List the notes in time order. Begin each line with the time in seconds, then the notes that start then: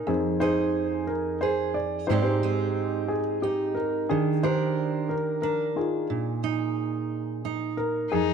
Already playing: G#4
0.07 F2 C4 D#4 G#4
0.40 D#4 G#4 C5
1.07 A#4
1.41 G#4 C5
1.74 D5
2.07 G#2 G#3 C4 D#4 G4 C5
2.11 D#4 G4 D5
2.22 D#4 G4 C5
2.43 C4 D#4
3.08 G#4
3.42 D#4 G4
3.74 A#4
4.09 D#3 D4 G#4
4.43 D4 G4 A#4 C5
5.09 A#4
5.42 D4 A#4
5.76 D#4 F4 G#4
6.10 A#2
6.44 D#4
7.45 D#4
7.77 A#4
8.12 F2 D#4 G#4